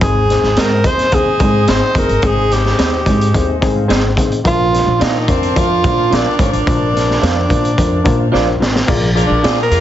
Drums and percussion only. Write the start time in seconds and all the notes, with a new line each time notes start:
0.01 kick, closed hi-hat
0.30 snare, closed hi-hat
0.44 snare
0.56 snare, closed hi-hat
0.84 kick, closed hi-hat
0.99 snare, closed hi-hat
1.12 kick, closed hi-hat
1.40 kick, closed hi-hat
1.67 snare, closed hi-hat
1.95 kick, closed hi-hat
2.09 closed hi-hat
2.22 kick, closed hi-hat
2.51 snare, closed hi-hat
2.65 snare
2.79 snare, closed hi-hat
3.06 kick, closed hi-hat
3.21 closed hi-hat
3.34 kick, closed hi-hat
3.62 kick, closed hi-hat
3.90 snare, closed hi-hat
4.17 kick, closed hi-hat
4.32 closed hi-hat
4.45 kick, closed hi-hat
4.74 snare, closed hi-hat
5.01 snare, closed hi-hat
5.28 kick, closed hi-hat
5.43 closed hi-hat
5.56 kick, closed hi-hat
5.84 kick, closed hi-hat
6.12 snare, closed hi-hat
6.39 kick, closed hi-hat
6.53 closed hi-hat
6.67 kick, closed hi-hat
6.97 snare, closed hi-hat
7.10 snare
7.23 snare, closed hi-hat
7.50 kick, closed hi-hat
7.65 closed hi-hat
7.78 kick, closed hi-hat
8.05 kick, closed hi-hat
8.34 snare
8.62 snare
8.76 snare
8.88 kick, crash
9.17 closed hi-hat
9.44 snare, closed hi-hat
9.71 closed hi-hat